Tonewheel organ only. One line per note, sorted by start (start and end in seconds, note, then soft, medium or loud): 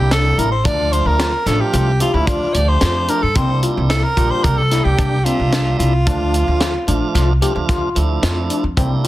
0.00 0.52 G3 medium
0.00 0.52 A#3 medium
0.00 0.52 D4 medium
0.00 0.52 E4 medium
0.64 1.33 F3 medium
0.64 1.33 A3 medium
0.64 1.33 D4 medium
0.64 1.33 F4 medium
1.46 1.92 F3 medium
1.46 1.92 A3 medium
1.46 1.92 D4 medium
1.46 1.92 F4 medium
2.00 2.12 F3 medium
2.00 2.12 A3 medium
2.00 2.12 D4 medium
2.00 2.12 E4 medium
2.14 2.48 F3 medium
2.14 2.48 A3 medium
2.14 2.48 D4 medium
2.14 2.49 F4 medium
2.55 3.23 F3 medium
2.55 3.23 A3 medium
2.55 3.23 D4 medium
2.55 3.23 G4 medium
3.36 4.04 G3 medium
3.36 4.04 A#3 medium
3.36 4.05 D4 medium
3.36 4.05 E4 medium
4.17 4.62 G3 medium
4.17 4.63 A#3 medium
4.17 4.63 D4 medium
4.17 4.63 G4 medium
4.71 4.82 G3 medium
4.71 4.83 A#3 medium
4.71 4.83 D4 medium
4.71 4.83 E4 medium
4.85 5.19 G3 medium
4.85 5.19 A#3 medium
4.85 5.19 D4 medium
4.85 5.19 G4 medium
5.25 5.93 G3 medium
5.25 5.93 A#3 medium
5.25 5.94 D4 medium
5.25 5.94 E5 medium
6.06 6.74 F3 medium
6.06 6.75 A3 medium
6.06 6.75 D4 medium
6.06 6.75 F4 medium
6.87 7.33 F3 medium
6.87 7.33 A3 medium
6.87 7.33 D4 medium
6.87 7.33 F4 medium
7.41 7.53 F3 medium
7.41 7.53 A3 medium
7.41 7.53 D4 medium
7.41 7.54 F4 loud
7.55 7.89 F3 medium
7.55 7.89 A3 medium
7.55 7.89 D4 medium
7.55 7.90 F4 medium
7.95 8.64 F3 medium
7.95 8.64 A3 medium
7.95 8.64 D4 medium
7.95 8.64 E4 medium
8.77 9.07 G3 medium
8.77 9.07 A#3 medium
8.77 9.07 D4 medium
8.77 9.07 E4 medium